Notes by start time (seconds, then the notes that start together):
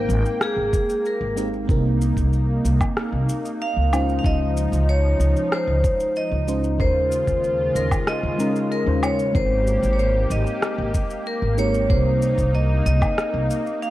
Already playing: G#3 A#3 C4 D#4 A#4 G5
0.09 G#1, shaker
0.26 shaker
0.41 G#4, cross-stick, shaker
0.57 G#1
0.73 kick, shaker
0.89 shaker
1.05 A#4, shaker
1.21 G#1
1.36 G#3 C4 D#4 G4 A#4, shaker
1.53 shaker
1.67 C2 A#3 C4 D#4 G4 A#4, kick, shaker
2.01 shaker
2.17 C2, kick, shaker
2.33 shaker
2.65 C2, shaker
2.81 kick, low woodblock, shaker
2.97 cross-stick, shaker
3.13 C2
3.29 shaker
3.45 shaker
3.61 F5, shaker
3.76 C#2
3.92 F3 G#3 C#4 D#4 F4 C5, low woodblock, shaker
4.09 shaker
4.19 F5
4.23 C#2 G#3 C#4 D#4 F4 D#5, kick, shaker
4.57 shaker
4.72 C#2, shaker
4.89 C#5, shaker
5.20 C#2, shaker
5.36 shaker
5.52 C5, cross-stick, shaker
5.67 C#2
5.84 kick, shaker
6.00 shaker
6.16 D#5, shaker
6.31 C#2
6.47 G#3 C#4 D#4 F4 C5, shaker
6.64 shaker
6.78 D#2 C#3 G#3 C#4 D#4 F4 A#4 C5, kick, shaker
7.12 shaker
7.27 D#2, kick, shaker
7.44 shaker
7.75 D#2 A#4, shaker
7.91 kick, low woodblock, shaker
8.07 D#5, cross-stick, shaker
8.23 D#2
8.38 G#3 C#4 D#4 F4 A#4, shaker
8.56 shaker
8.72 A#4, shaker
8.86 D#2 G#3 C#4 D#4 F4 C5
9.03 C#5, low woodblock, shaker
9.19 shaker
9.33 G#1 G#3 A#3 C4 D#4 G4 A#4 C5, kick, shaker
9.67 shaker
9.83 G#1, shaker
9.93 C#5
9.99 C5, shaker
10.30 G#1 D#5, shaker
10.47 shaker
10.63 cross-stick, shaker
10.78 G#1
10.94 kick, shaker
11.11 shaker
11.26 A#4, shaker
11.42 G#1
11.58 G#3 C4 D#4 G4 A#4 C#5, shaker
11.74 shaker
11.89 C2 A#3 C4 D#4 G4 A#4 C5, kick, shaker
12.22 shaker
12.38 C2, kick, shaker
12.54 D#5, shaker
12.86 C2 D#5, shaker
13.02 kick, low woodblock, shaker
13.18 cross-stick, shaker
13.34 C2
13.50 shaker
13.67 shaker
13.82 F5, shaker